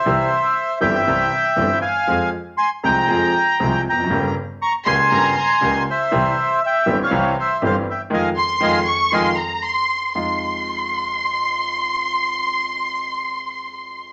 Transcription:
X:1
M:4/4
L:1/16
Q:1/4=119
K:Fm
V:1 name="Violin section"
z16 | z16 | z6 c'2 b2 b2 z4 | z16 |
z2 c'4 d'2 c'2 b2 c'4 | c'16- | c'16 |]
V:2 name="Bandoneon"
[c=e]6 [eg]8 [fa]2- | [fa]2 z2 [ac']2 [gb]8 [gb]2- | [gb]2 z2 [bd']2 [ac']8 [c=e]2- | [c=e]4 [eg]3 [df]3 [ce]2 [cf]2 [eg]2 |
[efa]2 z2 [efa]2 z2 [efa]2 z6 | z16 | z16 |]
V:3 name="Grand piano" clef=bass
[C,,C,=E,G,CG]2 z4 [G,,,G,,E,G,CG]2 [C,,C,E,G,CG]2 z2 [G,,,G,,E,G,CG]2 z2 | [F,,F,A,CA]2 z4 [C,,C,F,A,CA]2 [F,,F,A,CA]2 z2 [C,,C,F,A,CA]2 z/2 =E,,/2 F,,/2 _G,,/2 | [G,,,G,,D,G,B,G]2 z4 [D,,D,G,B,G]2 [G,,,G,,D,G,B,G]2 z2 [D,,D,G,B,G]2 z2 | [C,,C,=E,G,CG]2 z4 [G,,,G,,E,G,CG]2 [C,,C,E,G,CG]2 z2 [G,,,G,,E,G,CG]2 z2 |
[E,F,A,]2 z2 [E,F,A,]2 z2 [E,F,A,]2 z6 | [F,,A,EF]16- | [F,,A,EF]16 |]
V:4 name="Double bass" clef=bass
C,,2 z4 G,,,2 C,,2 z2 G,,,2 z2 | F,,2 z4 C,,2 F,,2 z2 C,,2 F,,,2 | G,,,2 z4 D,,2 G,,,2 z2 D,,2 z2 | C,,2 z4 G,,,2 C,,2 z2 G,,,2 z2 |
F,,2 z2 F,,2 z2 F,,2 z6 | F,,2 z12 z2 | z16 |]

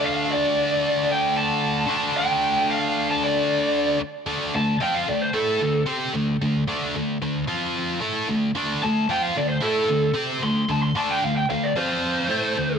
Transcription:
X:1
M:4/4
L:1/16
Q:1/4=112
K:Dm
V:1 name="Lead electric guitar"
f2 d6 g2 a6 | g4 f3 a d6 z2 | z2 a2 g f d c A4 z4 | z16 |
z2 a2 g f d c A4 z2 c'2 | a c' a g f g f d c8 |]
V:2 name="Distorted electric guitar"
[D,A,D]12- [D,A,D]2 [D,A,D]2- | [D,A,D]12- [D,A,D]2 z2 | [D,A,D]2 [D,A,]2 [F,CF]2 [D,A,]2 [A,EA]2 [D,A,]2 [CGc]2 [D,A,]2 | [D,A,]2 [D,A,D]2 [D,A,]2 [D,A,]2 [F,CF]4 [A,EA]2 [D,A,]2 |
[D,A,D]2 [D,A,]2 [F,CF]2 [D,A,]2 [A,EA]2 [D,A,]2 [CGc]2 [D,A,]2 | [D,A,]2 [D,A,D]2 [D,A,]2 [D,A,]2 [F,CF]4 [A,EA]2 [D,A,]2 |]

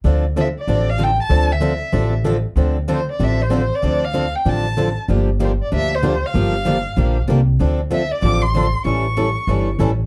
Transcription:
X:1
M:4/4
L:1/8
Q:"Swing" 1/4=191
K:Dm
V:1 name="Violin"
z2 e d2 f g a- | a e4 z3 | z2 c d e c2 d- | d f2 g a3 z |
z2 c d e c2 f- | f4- f z3 | z2 e d d' c'3 | ^c'6 z2 |]
V:2 name="Steel-string acoustic guitar"
[D,F,CDA] z [D,F,CDA] z [D,F,CDA] z [D,F,CDA] z | [D,F,CDA] z [D,F,CDA] z [D,F,CDA] z [D,F,CDA] z | [D,F,CDA] z [D,F,CDA] z [D,F,CDA] z [D,F,CDA] z | [D,F,CDA] z [D,F,CDA] z [D,F,CDA] z [D,F,CDA] z |
[D,F,B,DG] z [D,F,B,DG] z [D,F,B,DG] z [D,F,B,DG] z | [D,F,B,DG] z [D,F,B,DG] z [D,F,B,DG] z [D,F,B,DG] z | [D,F,CDA] z [D,F,CDA] z [D,F,CDA] z [D,F,CDA] z | [E,G,^CEA] z [E,G,CEA] z [E,G,CEA] z [E,G,CEA] z |]
V:3 name="Steel-string acoustic guitar"
[D,F,CDA] z [D,F,CDA] z [D,F,CDA] z [D,F,CDA] z | [D,F,CDA] z [D,F,CDA] z [D,F,CDA] z [D,F,CDA] z | [D,F,CDA] z [D,F,CDA] z [D,F,CDA] z [D,F,CDA] z | [D,F,CDA] z [D,F,CDA] z [D,F,CDA] z [D,F,CDA] z |
[D,F,B,DG] z [D,F,B,DG] z [D,F,B,DG] z [D,F,B,DG] z | [D,F,B,DG] z [D,F,B,DG] z [D,F,B,DG] z [D,F,B,DG] z | [D,F,CDA] z [D,F,CDA] z [D,F,CDA] z [D,F,CDA] z | [E,G,^CEA] z [E,G,CEA] z [E,G,CEA] z [E,G,CEA] z |]
V:4 name="Upright bass" clef=bass
D,,4 A,,,4 | D,,4 A,,,4 | D,,4 A,,,4 | D,,4 A,,,4 |
G,,,4 D,,4 | G,,,4 B,,,2 C,,2 | D,,4 A,,,4 | A,,,4 G,,,2 A,,,2 |]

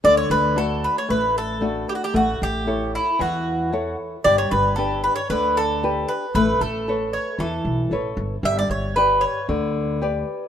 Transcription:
X:1
M:4/4
L:1/16
Q:1/4=114
K:D
V:1 name="Bouzouki"
d c B2 A2 B c B2 A4 G/2 F/2 G | F2 G4 E2 F6 z2 | d c B2 A2 B c B2 A4 B2 | B2 A4 c2 A6 z2 |
e d c2 B2 c2 z8 |]
V:2 name="Nylon-string guitar"
D,4 [A,DF]4 A,4 [A,DF]4 | A,4 [EAc]4 E,4 [EAc]4 | G,4 [DGB]4 D,4 [DGB]4 | A,4 [ABc]4 E,4 [ABc]4 |
G,4 [GBd]4 D,4 [GBd]4 |]
V:3 name="Upright bass" clef=bass
D,,2 D,,6 A,,,8 | A,,,2 A,,,6 E,,8 | G,,,2 G,,,6 D,,8 | A,,,2 A,,,6 E,,2 B,,,2 A,,,2 G,,,2 |
G,,,2 G,,,6 D,,8 |]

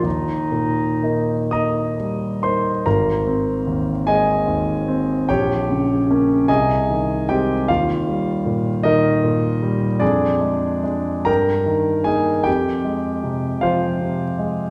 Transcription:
X:1
M:6/8
L:1/8
Q:3/8=50
K:Eb
V:1 name="Clarinet"
E3 z3 | [K:Ab] z6 | z6 | z6 |
z6 | z6 |]
V:2 name="Grand piano"
z3 [ebe']2 [cc'] | [K:Ab] [Bb]3 [Aea]3 | [Gdg]3 [Aea]2 [Gg] | [Ff]3 [EBe]3 |
[=DA=d]3 [Bgb]2 [Aa] | [Gg]3 [Fcf]3 |]
V:3 name="Grand piano" clef=bass
E,, B,, [B,E] [B,E] G, [B,E] | [K:Ab] A,,, C E,, A, E,, C | B,,, D, [B,D] C,, E, [A,C] | E,, G, B,, E, B,, G, |
F,, A, [A,=D] G,, E, [B,E] | F,, A, C, F, C, A, |]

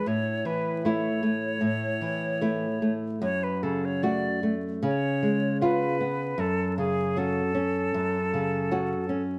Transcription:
X:1
M:4/4
L:1/16
Q:1/4=76
K:F#m
V:1 name="Flute"
c2 B2 c12 | c B A c d3 z c4 B4 | A2 G2 A12 |]
V:2 name="Nylon-string guitar"
A,,2 E,2 [A,E]2 A,2 A,,2 E,2 [A,E]2 A,2 | F,,2 C,2 [A,F]2 A,2 C,2 G,2 [B,^E]2 B,2 | F,,2 C,2 [CF]2 C2 F,,2 C,2 [CF]2 C2 |]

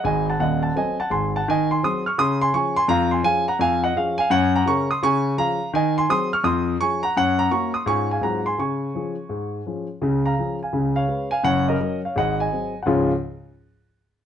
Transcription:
X:1
M:4/4
L:1/16
Q:"Swing" 1/4=168
K:Db
V:1 name="Grand piano"
[ea]2 [g=a]2 [eg]2 [ga]2 [e_a]2 [g=a]2 [_ac']2 [g=a]2 | [ea]2 [ac']2 [c'e']2 [d'f']2 [c'e']2 [ac']2 [ad']2 [ac']2 | [fb]2 [ac']2 [fa]2 [gb]2 [fa]2 [eg]2 [df]2 [fa]2 | [dg]2 [gb]2 [bd']2 [c'e']2 [ad']4 [fb]4 |
[ea]2 [ac']2 [c'e']2 [d'f']2 [c'e']4 [ad']2 [gb]2 | [dg]2 [gb]2 [bd']2 [c'e']2 [ad']2 [fa]2 [gb]2 [ac']2 | [ad']12 z4 | z2 [fb]4 [fa]4 [df]4 [fa]2 |
[dg]2 [Be]4 [df]2 [eg]2 [ea]4- [ea] g | [D,,A,,F,A,DFd]2 z12 z2 |]
V:2 name="Grand piano" clef=bass
[A,,,A,,]4 [E,,,E,,]4 [G,C=A]4 [_A,,,A,,]4 | E,4 [G,CA]4 D,4 [F,DA]4 | F,,4 [F,DA]4 F,,4 [F,DA]4 | G,,4 [D,DB]4 D,4 [F,DA]4 |
E,4 [G,CA]4 F,,4 [F,DA]4 | G,,4 [B,DG]4 [A,,A,DF]4 [A,,G,CF]4 | D,4 [F,DA]4 A,,4 [F,DA]4 | [D,,D,]4 [F,DA]4 [D,,D,]4 [A,D_c]4 |
[G,,,G,,]4 [G,B]4 [A,,,A,,]4 [G,CA]4 | z16 |]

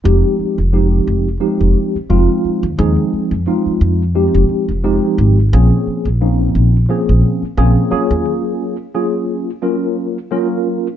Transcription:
X:1
M:4/4
L:1/16
Q:"Swing 16ths" 1/4=88
K:Fm
V:1 name="Tine electric piano"
[F,A,CEG]3 z [F,A,CEG]3 z [F,A,CEG]3 z [F,A,CEF]3 z | [F,A,CEA]3 z [F,A,CEF]3 z [F,A,CEG]3 z [F,A,CEG]3 z | [F,B,CDA]3 z [F,B,CDE]3 z [F,B,CDA]3 z [F,B,CDA]2 [_G,B,DFA]2- | [_G,B,DFA]2 z2 [G,B,DFA]3 z [G,B,DFB]3 z [G,B,DFB]3 z |]
V:2 name="Upright bass" clef=bass
F,,, z2 F,,,3 F,,,2 z F,,, z2 F,,, z2 E,, | E,, z2 F,, z2 F,,3 F,,, z F,,,2 z A,,,2 | B,,, z2 B,,,3 B,,,2 z B,,, z2 B,,, z2 E,, | z16 |]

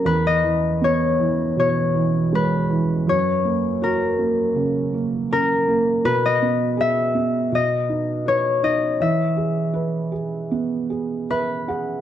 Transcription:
X:1
M:4/4
L:1/16
Q:1/4=80
K:E
V:1 name="Harp"
B d3 c4 c4 B4 | c4 ^A4 z4 A4 | B d3 e4 d4 c2 d2 | e12 B4 |]
V:2 name="Felt piano"
E,,2 E,2 B,2 E,2 B,,2 E,2 G,2 E,2 | F,,2 ^A,2 F2 A,2 C,2 A,2 C2 A,2 | B,,2 B,2 G2 B,2 B,,2 D2 B2 D2 | E,2 G2 B2 G2 B,2 G2 [Be]2 [Gf]2 |]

